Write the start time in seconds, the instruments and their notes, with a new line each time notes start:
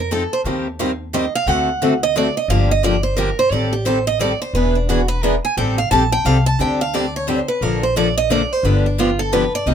Already playing: upright bass F2
0.00 steel-string acoustic guitar A#4
0.11 steel-string acoustic guitar F3 C4 D#4 A4
0.33 steel-string acoustic guitar C5
0.44 upright bass D#2, steel-string acoustic guitar D#3 G3 A#3 C4 D#4 G4 A#4 C5
0.79 steel-string acoustic guitar D#3 G3 A#3 C4 D#4 G4 A#4 C5
1.13 steel-string acoustic guitar D#3 G3 A#3 C4 D#4 G4 A#4 C5 D#5
1.35 steel-string acoustic guitar F5
1.46 upright bass D2, steel-string acoustic guitar D3 A3 C4 F#4 A4 F#5
1.82 steel-string acoustic guitar D3 A3 C4 F#4 A4
2.03 steel-string acoustic guitar D#5
2.16 steel-string acoustic guitar D3 A3 C4 F#4 A4 D5
2.37 steel-string acoustic guitar D#5
2.48 upright bass G1, steel-string acoustic guitar D3 F3 A#3 D4 G4 F5
2.71 steel-string acoustic guitar D#5
2.83 steel-string acoustic guitar D3 F3 A#3 D4 G4 D5
3.03 steel-string acoustic guitar C5
3.17 steel-string acoustic guitar D3 F3 A#3 D4 G4 A#4
3.39 steel-string acoustic guitar C5
3.50 upright bass A1, steel-string acoustic guitar D#3 G3 C4 G4 A4 D5
3.73 steel-string acoustic guitar G4
3.86 steel-string acoustic guitar D#3 G3 C4 G4 A4 C5
4.07 steel-string acoustic guitar D#5
4.21 steel-string acoustic guitar D#3 G3 C4 G4 A4 D5
4.42 steel-string acoustic guitar C5
4.53 upright bass E1, steel-string acoustic guitar E3 B3 D4 G#4 B4
4.75 steel-string acoustic guitar D4
4.89 steel-string acoustic guitar E3 B3 D4 F#4 G#4 B4
5.08 steel-string acoustic guitar B4
5.22 steel-string acoustic guitar E3 B3 D4 G#4 A#4 B4
5.45 steel-string acoustic guitar G#5
5.57 upright bass A1, steel-string acoustic guitar D#3 G3 C4 G4 A4 G5
5.78 steel-string acoustic guitar F5
5.91 upright bass A#1, steel-string acoustic guitar D#3 G3 C4 G4 A4 A5
6.12 steel-string acoustic guitar G5
6.25 upright bass C2, steel-string acoustic guitar D#3 G3 C4 G4 A4 F5
6.46 steel-string acoustic guitar A5
6.59 upright bass D2, steel-string acoustic guitar D3 G3 C4 D4 G4 G5
6.81 steel-string acoustic guitar F5
6.94 steel-string acoustic guitar D3 G3 C4 D4 G4 D5
7.16 steel-string acoustic guitar C#5
7.28 steel-string acoustic guitar D3 G3 C4 D4 G4 C5
7.48 steel-string acoustic guitar B4
7.61 upright bass A#1, steel-string acoustic guitar D3 F3 A#3 D4 A4 A#4
7.83 steel-string acoustic guitar C5
7.96 steel-string acoustic guitar D3 F3 A#3 D4 A4 D5
8.17 steel-string acoustic guitar D#5
8.31 steel-string acoustic guitar D3 F3 A#3 D4 A4 D5
8.53 steel-string acoustic guitar C5
8.63 upright bass G1, steel-string acoustic guitar D3 F3 B3 D4 G4 B4
8.86 steel-string acoustic guitar D4
8.99 steel-string acoustic guitar D3 F3 B3 D4 F4 G4
9.19 steel-string acoustic guitar A4
9.33 steel-string acoustic guitar D3 F3 B3 D4 G4 B4
9.55 steel-string acoustic guitar D5
9.66 upright bass C2, steel-string acoustic guitar C3 G3 A#3 D#4 G4 D#5